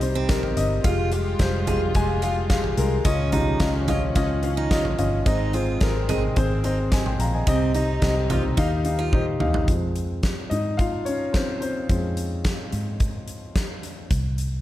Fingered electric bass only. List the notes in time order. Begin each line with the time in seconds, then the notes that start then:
Already playing: C2
0.57 G1
0.84 F1
1.40 F1
1.95 F1
2.78 C2
3.05 C#2
3.60 C#2
4.16 C#2
4.98 G1
5.26 G#1
5.81 G#1
6.37 G#1
7.19 A#1
7.47 C2
8.02 C2
8.58 D#2
9.40 D#2
9.68 F2
10.51 G#2
11.89 F2
12.73 G#2
14.11 C2